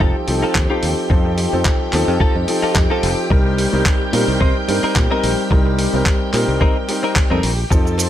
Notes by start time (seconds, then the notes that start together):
Already playing: G4 G5
0.00 F1 F3 C4 D#4 F4 A4, kick
0.27 C2 F3 C4 D#4 A4, muted clean electric guitar stroke, open hi-hat
0.42 D#4 F4 A4
0.55 D#2, kick, clap
0.70 F3 C4 D#4 F4 G4 A4
0.83 D#2, open hi-hat
1.10 F2 F3 C4 D#4 A4, muted clean electric guitar stroke, kick
1.25 muted clean electric guitar stroke
1.38 open hi-hat
1.53 F2 F3 C4 D#4 A4
1.65 kick, clap
1.93 D#2 F3 C4 D#4 A4, clap, open hi-hat
2.08 F2
2.20 F3 D#4 F4 A4, kick
2.35 F2
2.48 F3 C4 D#4 A4, muted clean electric guitar stroke, open hi-hat
2.62 D#4 F4 A4, muted fingered electric bass stroke
2.75 F2, kick, clap
2.90 F3 C4 D#4 F4 A4
3.03 F1, open hi-hat
3.30 C2 G3 C4 D#4 A#4, muted clean electric guitar stroke, kick
3.45 muted clean electric guitar stroke
3.58 open hi-hat
3.73 C2 G3 C4 D#4 A#4
3.86 kick, clap
4.13 A#2 G3 C4 D#4 A#4, open hi-hat
4.28 C2
4.40 C3 G3 C4 D#4 C5, kick
4.68 G2 G3 C4 D#4 A#4, muted clean electric guitar stroke, open hi-hat
4.83 C4 D#4 A#4, muted fingered electric bass stroke
4.96 A#2, kick, clap
5.11 G3 C4 D#4 A#4
5.24 A#1, open hi-hat
5.51 C2 G3 C4 D#4 A#4, muted clean electric guitar stroke, kick
5.65 muted clean electric guitar stroke
5.79 open hi-hat
5.93 C2 G3 C4 D#4 A#4
6.06 kick, clap
6.33 A#2 G3 C4 D#4 A#4, clap, open hi-hat
6.48 C2
6.61 G3 C4 D#4 A#4, kick
6.88 G3 C4 D#4 A#4, muted clean electric guitar stroke, open hi-hat
7.03 C4 D#4 A#4
7.16 kick, clap
7.30 F2 G3 C4 D#4 A4 A#4
7.43 A#1, open hi-hat
7.70 F2 F3 C4 D#4 A4 C5 A5, muted clean electric guitar stroke, kick, shaker
7.85 muted clean electric guitar stroke, shaker
7.98 open hi-hat, cowbell, shaker